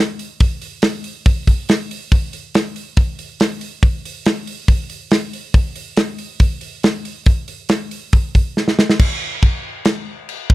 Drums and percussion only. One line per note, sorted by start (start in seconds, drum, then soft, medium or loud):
0.19 open hi-hat medium
0.40 kick loud
0.40 open hi-hat medium
0.62 open hi-hat medium
0.82 snare loud
0.82 open hi-hat medium
1.04 open hi-hat medium
1.26 kick loud
1.26 open hi-hat medium
1.47 kick medium
1.47 open hi-hat medium
1.69 snare loud
1.69 open hi-hat medium
1.91 open hi-hat medium
2.12 kick loud
2.12 open hi-hat medium
2.33 open hi-hat medium
2.55 snare loud
2.55 open hi-hat medium
2.76 open hi-hat medium
2.97 kick loud
2.97 open hi-hat medium
3.19 open hi-hat medium
3.40 snare loud
3.40 open hi-hat medium
3.61 open hi-hat medium
3.83 kick loud
3.83 open hi-hat medium
4.05 open hi-hat medium
4.26 snare loud
4.26 open hi-hat medium
4.47 open hi-hat medium
4.68 kick loud
4.68 open hi-hat medium
4.90 open hi-hat medium
5.11 snare loud
5.11 open hi-hat medium
5.33 open hi-hat medium
5.54 kick loud
5.54 open hi-hat medium
5.76 open hi-hat medium
5.97 snare loud
5.97 open hi-hat medium
6.18 open hi-hat medium
6.40 kick loud
6.40 open hi-hat medium
6.61 open hi-hat medium
6.83 snare loud
6.83 open hi-hat medium
7.05 open hi-hat medium
7.26 kick loud
7.26 open hi-hat medium
7.48 open hi-hat medium
7.69 snare loud
7.69 open hi-hat medium
7.91 open hi-hat medium
8.13 kick loud
8.13 open hi-hat medium
8.35 kick medium
8.35 open hi-hat medium
8.57 snare medium
8.68 snare medium
8.79 snare loud
8.90 snare medium
8.99 kick loud
8.99 crash loud
8.99 crash medium
9.43 kick loud
9.43 crash medium
9.85 snare loud
9.85 crash medium
10.29 crash medium
10.50 kick loud